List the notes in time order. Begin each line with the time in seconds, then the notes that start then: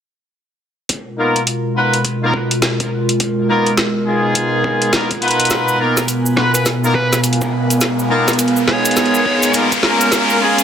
0.89 B2 G#3 F4 A#4, kick, closed hi-hat
1.18 A#3 B3 D#4 F4 A#4
1.36 closed hi-hat
1.47 closed hi-hat
1.76 B3 D#4 F4 B4
1.93 closed hi-hat
2.05 kick, closed hi-hat
2.22 A#3 B3 D#4 F4 A#4
2.34 kick
2.51 closed hi-hat
2.62 snare, closed hi-hat
2.80 kick, closed hi-hat
3.09 closed hi-hat
3.20 kick, closed hi-hat
3.49 A#3 B3 D#4 F4 A#4
3.67 closed hi-hat
3.77 snare, closed hi-hat
4.06 G#3 B3 D#4 F4 G#4
4.35 kick, closed hi-hat
4.64 kick
4.82 closed hi-hat
4.93 A#3 B3 D#4 F4 A#4, snare, closed hi-hat
5.11 kick, closed hi-hat
5.22 B3 D#4 F4 B4, closed hi-hat
5.28 closed hi-hat
5.31 closed hi-hat
5.40 closed hi-hat
5.41 closed hi-hat
5.45 closed hi-hat
5.47 B2 G#3 F4 A#4, snare, closed hi-hat, riser, cabasa
5.51 B3, kick, closed hi-hat
5.65 A#4, cabasa
5.73 G#5
5.79 A#3 B3 D#4 F4 A#4
5.97 snare, closed hi-hat, cabasa
6.08 closed hi-hat, cabasa
6.26 cabasa
6.34 B3 D#4 F4 B4 F5, snare
6.54 B4, closed hi-hat, cabasa
6.66 kick, snare, closed hi-hat, cabasa
6.84 A#3 B3 D#4 F4 A#4, cabasa
6.95 B4, kick
7.13 snare, closed hi-hat, cabasa
7.24 closed hi-hat, cabasa
7.33 closed hi-hat
7.41 kick, cabasa
7.70 closed hi-hat, cabasa
7.81 G#4, kick, snare, closed hi-hat, cabasa
7.99 cabasa
8.10 A#3 B3 D#4 F4 A#4
8.28 snare, closed hi-hat, cabasa
8.33 closed hi-hat
8.39 closed hi-hat, cabasa
8.48 closed hi-hat
8.56 cabasa
8.68 G#3 B3 D#4 F4 G#4 C#5, snare
8.85 closed hi-hat, cabasa
8.91 closed hi-hat
8.96 snare, closed hi-hat, cabasa
9.06 closed hi-hat
9.14 cabasa
9.26 kick
9.43 closed hi-hat, cabasa
9.54 A#3 B3 D#4 F4 A#4, closed hi-hat, cabasa
9.72 kick, closed hi-hat, cabasa
9.83 A#3 C#4 F4 A#4, snare
10.01 closed hi-hat, cabasa
10.12 C#4 A#4, kick, snare, closed hi-hat, cabasa
10.30 cabasa
10.41 G#3 A#3 C#4 F4 G#4
10.58 closed hi-hat, cabasa